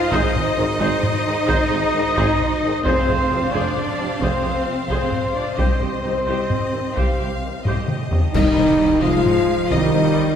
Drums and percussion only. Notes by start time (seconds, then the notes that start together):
0.12 taiko
0.35 taiko low-mid
1.03 taiko low-mid
1.49 taiko
2.17 taiko
2.40 taiko low-mid
2.86 taiko
3.08 taiko low-mid
3.77 taiko low-mid
4.21 taiko
4.90 taiko
5.12 taiko low-mid
5.59 taiko
5.81 taiko low-mid
6.50 taiko low-mid
6.97 taiko
7.65 taiko low-mid
7.88 taiko mid
8.11 taiko low
8.34 concert bass drum, taiko, crash
8.57 taiko low-mid
9.26 taiko low-mid
9.72 taiko